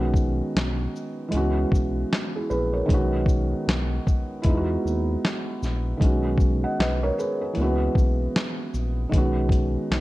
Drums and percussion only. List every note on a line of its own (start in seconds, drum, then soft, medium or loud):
0.14 kick medium
0.14 shaker soft
0.57 snare medium
0.57 closed hi-hat medium
0.96 shaker soft
1.32 closed hi-hat medium
1.72 kick loud
1.72 shaker medium
2.13 snare loud
2.13 closed hi-hat medium
2.51 shaker soft
2.89 kick loud
2.89 closed hi-hat medium
3.26 kick medium
3.26 shaker soft
3.69 snare loud
3.69 closed hi-hat medium
4.07 kick medium
4.07 shaker soft
4.43 kick medium
4.43 closed hi-hat medium
4.87 shaker medium
5.25 snare loud
5.25 closed hi-hat medium
5.63 snare soft
5.63 shaker soft
6.01 kick medium
6.01 closed hi-hat medium
6.38 kick medium
6.38 shaker medium
6.80 snare medium
6.80 closed hi-hat medium
7.19 shaker soft
7.55 closed hi-hat medium
7.95 kick loud
7.95 shaker soft
8.36 snare loud
8.36 closed hi-hat medium
8.74 shaker soft
9.12 kick medium
9.12 closed hi-hat medium
9.49 kick medium
9.49 closed hi-hat soft
9.49 shaker soft
9.92 snare medium
9.92 closed hi-hat medium